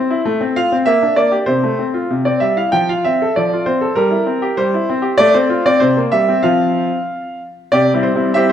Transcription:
Already playing: C4 C5
0.11 E4
0.25 A3
0.41 C4
0.56 F4 F5
0.72 C4
0.86 A#3 E5
1.03 D4
1.16 A#3 D5
1.32 G4
1.46 C3 C5
1.63 A3
1.79 C4
1.94 F4
2.10 C3
2.25 C4 D5
2.40 G3 E5
2.57 E4 F5
2.72 F3 G5
2.89 F4 F5
3.05 C4 E5
3.22 A4
3.36 F3 D5
3.53 F4
3.66 C4 C5
3.81 A4
3.96 G3 A#4
4.11 E4
4.26 C4
4.42 G4
4.57 G3 C5
4.74 E4
4.90 C4
5.02 G4
5.18 A3 D5
5.34 C4 C5
5.49 F4
5.66 C4 D5
5.80 C3 C5
5.97 A#3
6.12 G3 E5
6.29 C4
6.43 F3 C4 F4 F5
7.72 C3 G4 D5
7.94 G3 C4 E4
8.03 C5
8.15 G3 C4 E4
8.34 G3 C4 E4 G4 C5 E5

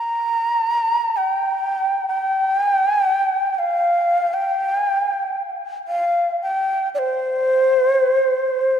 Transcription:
Already playing: A#5
1.17 G5
2.08 G5
2.58 G#5
2.72 G5
2.87 G#5
3.00 G5
3.54 G5
3.59 F5
4.34 G5
4.77 G#5
4.88 G5
5.01 G#5
5.13 G5
5.88 F5
6.42 G5
6.95 D5
6.99 C5

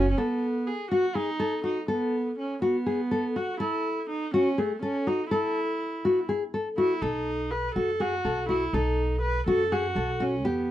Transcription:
Already playing: F#1
0.11 C#4
0.18 B3 A4
0.67 G#4
0.91 F#4
1.15 D#4 G#4
1.40 A4
1.64 D#4 F#4
1.88 B3 A4
2.39 C#4
2.62 B3 F#4
2.86 G#4
3.11 A4
3.36 F#4
3.60 E4 A4
4.10 D#4
4.34 C#4 F#4
4.58 A3 G#4
4.82 C#4 A4
5.07 D#4 F#4
5.31 E4 A4
6.05 F#4
6.29 G#4
6.54 A4
6.78 E4 F#4
7.01 B1 D#4 A4
7.51 B4
7.75 F#2 F#4 A4
8.00 F#4 G#4
8.24 B1 A4
8.49 E4 F#4
8.73 B1 D#4 A4
9.22 B4
9.46 F#2 F#4 A4
9.72 F#4 G#4
9.95 B1 A4
10.20 C#4 F#4
10.45 E2 B3 G4

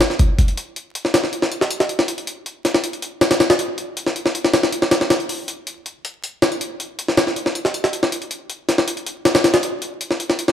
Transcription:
0.01 snare, closed hi-hat
0.10 snare
0.19 kick, closed hi-hat
0.39 kick, closed hi-hat
0.48 closed hi-hat
0.57 closed hi-hat
0.76 closed hi-hat
0.95 closed hi-hat
1.05 snare
1.14 snare, closed hi-hat
1.24 snare
1.33 closed hi-hat
1.42 snare
1.52 closed hi-hat
1.61 snare
1.71 closed hi-hat
1.80 snare
1.89 closed hi-hat
1.99 snare
2.08 closed hi-hat
2.18 closed hi-hat
2.27 closed hi-hat
2.46 closed hi-hat
2.65 snare, closed hi-hat
2.74 snare
2.84 closed hi-hat
2.93 closed hi-hat
3.02 closed hi-hat
3.21 snare, closed hi-hat
3.31 snare, closed hi-hat
3.40 snare, closed hi-hat
3.50 snare, closed hi-hat
3.59 closed hi-hat
3.78 closed hi-hat
3.97 closed hi-hat
4.06 snare
4.16 closed hi-hat
4.26 snare
4.35 closed hi-hat
4.44 snare
4.53 snare, closed hi-hat
4.63 snare
4.72 closed hi-hat
4.82 snare
4.91 snare, closed hi-hat
5.01 snare
5.10 snare, closed hi-hat
5.20 closed hi-hat
5.29 open hi-hat
5.48 closed hi-hat
5.67 closed hi-hat
5.86 closed hi-hat
6.05 closed hi-hat
6.24 closed hi-hat
6.42 snare, closed hi-hat
6.52 closed hi-hat
6.61 closed hi-hat
6.80 closed hi-hat
6.99 closed hi-hat
7.08 snare
7.17 snare, closed hi-hat
7.27 snare
7.36 closed hi-hat
7.46 snare
7.55 closed hi-hat
7.65 snare
7.74 closed hi-hat
7.84 snare
7.93 closed hi-hat
8.03 snare
8.12 closed hi-hat
8.22 closed hi-hat
8.31 closed hi-hat
8.50 closed hi-hat
8.69 snare, closed hi-hat
8.78 snare
8.88 closed hi-hat
8.97 closed hi-hat
9.07 closed hi-hat
9.25 snare, closed hi-hat
9.35 snare, closed hi-hat
9.44 snare, closed hi-hat
9.54 snare, closed hi-hat
9.63 closed hi-hat
9.82 closed hi-hat
10.01 closed hi-hat
10.11 snare
10.20 closed hi-hat
10.30 snare
10.39 closed hi-hat
10.48 snare

